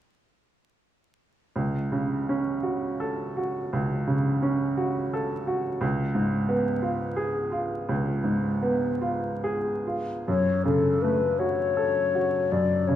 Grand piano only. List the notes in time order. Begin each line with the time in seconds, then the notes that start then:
1.56 C#2
1.92 C#3
2.29 C#4
2.63 F#4
3.00 A4
3.37 F#4
3.73 C#2
4.07 C#3
4.42 C#4
4.77 F#4
5.13 A4
5.47 F#4
5.81 C#2
6.15 G#2
6.49 B3
6.82 F4
7.16 G#4
7.52 F4
7.89 C#2
8.24 G#2
8.63 B3
9.01 F4
9.44 G#4
9.87 F4
10.28 F#2
10.65 C#3
11.04 A3
11.40 F#4
11.77 A4
12.15 F#4
12.52 F#2
12.88 C#3